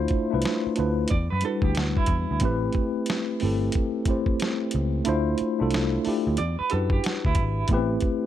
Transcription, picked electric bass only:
0, 0, Header, 1, 3, 480
1, 0, Start_track
1, 0, Key_signature, 0, "minor"
1, 0, Tempo, 659341
1, 1760, Time_signature, 4, 2, 24, 8
1, 6015, End_track
2, 0, Start_track
2, 0, Title_t, "Picked electric bass"
2, 0, Program_c, 0, 34
2, 246, Note_on_c, 0, 36, 89
2, 314, Note_off_c, 0, 36, 0
2, 574, Note_on_c, 0, 38, 97
2, 762, Note_off_c, 0, 38, 0
2, 818, Note_on_c, 0, 40, 80
2, 930, Note_off_c, 0, 40, 0
2, 965, Note_on_c, 0, 42, 99
2, 1033, Note_off_c, 0, 42, 0
2, 1186, Note_on_c, 0, 38, 92
2, 1262, Note_off_c, 0, 38, 0
2, 1293, Note_on_c, 0, 38, 90
2, 1407, Note_off_c, 0, 38, 0
2, 1519, Note_on_c, 0, 40, 95
2, 1638, Note_off_c, 0, 40, 0
2, 1682, Note_on_c, 0, 38, 83
2, 1751, Note_off_c, 0, 38, 0
2, 1762, Note_on_c, 0, 33, 108
2, 1955, Note_off_c, 0, 33, 0
2, 2497, Note_on_c, 0, 31, 94
2, 2684, Note_off_c, 0, 31, 0
2, 3456, Note_on_c, 0, 37, 108
2, 3643, Note_off_c, 0, 37, 0
2, 3695, Note_on_c, 0, 38, 113
2, 3883, Note_off_c, 0, 38, 0
2, 4087, Note_on_c, 0, 36, 82
2, 4348, Note_off_c, 0, 36, 0
2, 4565, Note_on_c, 0, 38, 88
2, 4649, Note_off_c, 0, 38, 0
2, 4658, Note_on_c, 0, 40, 79
2, 4770, Note_off_c, 0, 40, 0
2, 4900, Note_on_c, 0, 42, 98
2, 5086, Note_off_c, 0, 42, 0
2, 5283, Note_on_c, 0, 38, 96
2, 5362, Note_on_c, 0, 32, 105
2, 5373, Note_off_c, 0, 38, 0
2, 5555, Note_off_c, 0, 32, 0
2, 5604, Note_on_c, 0, 33, 106
2, 5796, Note_off_c, 0, 33, 0
2, 6015, End_track
3, 0, Start_track
3, 0, Title_t, "Muted picked electric bass strokes"
3, 84, Note_on_c, 9, 29, 52
3, 157, Note_off_c, 9, 29, 0
3, 485, Note_on_c, 9, 29, 48
3, 558, Note_off_c, 9, 29, 0
3, 3939, Note_on_c, 9, 29, 49
3, 4012, Note_off_c, 9, 29, 0
3, 4419, Note_on_c, 9, 29, 47
3, 4492, Note_off_c, 9, 29, 0
3, 4809, Note_on_c, 9, 29, 46
3, 4882, Note_off_c, 9, 29, 0
3, 6015, End_track
0, 0, End_of_file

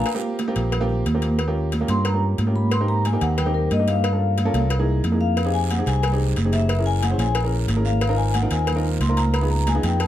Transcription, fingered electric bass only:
0, 0, Header, 1, 2, 480
1, 0, Start_track
1, 0, Key_signature, -3, "major"
1, 0, Tempo, 331126
1, 96, Time_signature, 4, 2, 24, 8
1, 14599, End_track
2, 0, Start_track
2, 0, Title_t, "Fingered electric bass"
2, 0, Program_c, 0, 33
2, 812, Note_on_c, 0, 34, 90
2, 1484, Note_off_c, 0, 34, 0
2, 1535, Note_on_c, 0, 39, 91
2, 2655, Note_off_c, 0, 39, 0
2, 2730, Note_on_c, 0, 43, 98
2, 3404, Note_off_c, 0, 43, 0
2, 3456, Note_on_c, 0, 44, 92
2, 4576, Note_off_c, 0, 44, 0
2, 4658, Note_on_c, 0, 39, 98
2, 5329, Note_off_c, 0, 39, 0
2, 5377, Note_on_c, 0, 43, 99
2, 6498, Note_off_c, 0, 43, 0
2, 6576, Note_on_c, 0, 36, 99
2, 7248, Note_off_c, 0, 36, 0
2, 7305, Note_on_c, 0, 41, 93
2, 8421, Note_off_c, 0, 41, 0
2, 8503, Note_on_c, 0, 36, 101
2, 9172, Note_off_c, 0, 36, 0
2, 9221, Note_on_c, 0, 30, 99
2, 10339, Note_off_c, 0, 30, 0
2, 10410, Note_on_c, 0, 34, 101
2, 11085, Note_off_c, 0, 34, 0
2, 11122, Note_on_c, 0, 32, 97
2, 12248, Note_off_c, 0, 32, 0
2, 12332, Note_on_c, 0, 39, 102
2, 13005, Note_off_c, 0, 39, 0
2, 13048, Note_on_c, 0, 37, 104
2, 14171, Note_off_c, 0, 37, 0
2, 14251, Note_on_c, 0, 41, 103
2, 14599, Note_off_c, 0, 41, 0
2, 14599, End_track
0, 0, End_of_file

